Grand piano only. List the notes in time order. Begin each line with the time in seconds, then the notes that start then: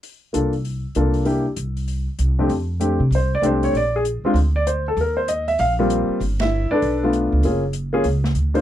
0.33 A#3 D4 F4 A4
0.96 A#3 D4 F4 A4
1.25 A#3 D4 E4 G4
2.39 F2 A3 C4 D4 G4
2.80 A3 C4 D4 G4
3.15 C5
3.35 D5
3.42 A3 C4 D4 G4
3.46 C5
3.64 C#5
3.77 D5
3.96 G#4
4.25 G#3 C4 D4 F4
4.56 D5
4.67 C5
4.88 A4
5.01 A#4
5.17 C5
5.28 D#5
5.48 E5
5.60 F5
5.79 G3 A#3 C4 F4
6.41 E4 E5
6.71 D4 A4 B4 D5
7.03 A3 B3 D4 F4
7.44 A#3 C#4 F4 G#4
7.93 A#3 C#4 F4 G#4
8.54 A#3 D4 F4 C5